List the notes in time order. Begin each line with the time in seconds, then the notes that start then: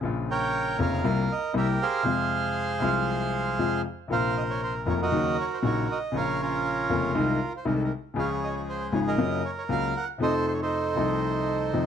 0.01 A#1 A#2 C#3 F3 A#3
0.05 F4
0.31 A#4 C#5 G5
0.79 F1 F2 C#3 F3 A#3 F4 A#4 F5
1.04 C2 C3 G3 A#3 F4
1.32 D#5
1.54 C2 C3 G3 A#3 E4 G4 A#4 E5
1.82 G#4 C5 F5
2.03 F2 C3 F3 G#3
2.07 F4
2.80 C2 C3 F3 G#3 F4
3.59 F2 C3 F3 G#3 F4
4.08 A#1 A#2 C3 F3 A#3
4.12 F4 A#4 C5 F5
4.37 D#5
4.50 C#5
4.63 C5
4.86 F1 F2 C3 F3 A#3 F4 C#5
5.02 F#4 A#4 D#5
5.12 D#2 C#3 D#3 F#3 A#3 D#4
5.41 C#5
5.54 C5
5.62 A#1 A#2 C#3 F#3 A#3 D#4 C#5
5.92 D#5
6.12 A#1 A#2 C#3 F3 A#3
6.16 F4 A#4 C#5 F5
6.42 C#4 F4 A#4
6.89 F1 F2 C#3 F3 A#3 F4
7.15 C2 C3 D#3 G#3 D#4
7.57 C5
7.65 C2 C3 D#3 G#3 D#4 A#4
7.75 A4
7.84 A#4
8.14 C#2 C#3 F3 G#3
8.18 F4 G#4 C#5 F5
8.44 D#5
8.57 C#5
8.69 C5
8.92 G#1 G#2 C#3 F3 G#3 F4 C#5
9.08 A#4 D#5
9.18 F#2 C#3 F#3 A#3 F4
9.45 C#5
9.58 C#5
9.69 C#2 C#3 F#3 A#3 F4 F5
9.97 F#5
10.18 F2 C3 F3 A3 D#4
10.22 A4 C5 D#5
10.48 C5
10.54 C#5
10.62 D#4 A4 C5
10.95 C2 C3 F3 A3
10.99 D#4
11.73 F2 C3 F3 A3 D#4